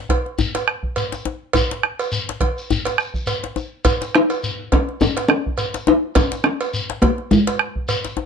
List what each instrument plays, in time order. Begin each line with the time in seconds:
0.09 bombo low, cowbell, djembe tone
0.26 djembe slap
0.39 djembe bass, shekere
0.55 cowbell, djembe slap, shekere
0.68 bombo rim
0.83 bombo low
0.96 cowbell, shekere
1.12 djembe slap, shekere
1.25 djembe tone
1.53 bombo low, cowbell, djembe bass, shekere
1.71 djembe slap
1.83 bombo rim, djembe slap
1.99 cowbell, shekere
2.12 bombo rim, shekere
2.29 djembe slap
2.41 bombo low, cowbell, djembe tone
2.58 shekere
2.71 djembe bass, shekere
2.85 cowbell, djembe slap, shekere
2.98 bombo rim, shekere
3.14 bombo low, shekere
3.27 cowbell, shekere
3.44 djembe slap
3.56 djembe tone, shekere
3.85 bombo low, cowbell, djembe bass, shekere
4.01 bombo rim, djembe slap, shekere
4.15 talking drum D#4, bombo rim
4.30 cowbell, shekere
4.43 shekere
4.72 talking drum C#4, bombo low, cowbell, djembe tone
4.89 djembe slap
5.01 talking drum C#4, djembe bass, shekere
5.17 cowbell, djembe slap, shekere
5.28 talking drum C#4, bombo rim
5.46 bombo low
5.58 cowbell, shekere
5.74 djembe slap, shekere
5.87 talking drum D#4, djembe tone
6.15 talking drum C#4, bombo low, cowbell, djembe bass, shekere
6.32 bombo rim, djembe slap, shekere
6.44 talking drum C#4, bombo rim
6.61 cowbell, shekere
6.74 shekere
6.90 djembe slap
7.02 talking drum A#3, bombo low, cowbell, djembe tone
7.18 djembe slap
7.31 talking drum G#3, djembe bass, shekere
7.47 cowbell, djembe slap, shekere
7.59 bombo rim
7.76 bombo low
7.89 cowbell, shekere
8.04 djembe slap, shekere
8.17 djembe tone